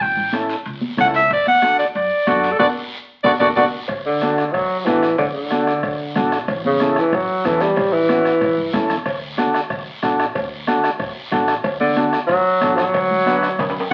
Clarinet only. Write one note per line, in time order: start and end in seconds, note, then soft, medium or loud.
0.01 0.34 G5 medium
1.00 1.07 F#5 loud
1.15 1.30 E5 medium
1.33 1.47 D5 medium
1.48 1.78 F#5 loud
1.79 1.86 D5 medium
1.96 2.56 D5 medium
2.59 2.67 D5 medium
3.24 3.32 D5 medium
3.39 3.48 D5 medium
3.56 3.64 D5 medium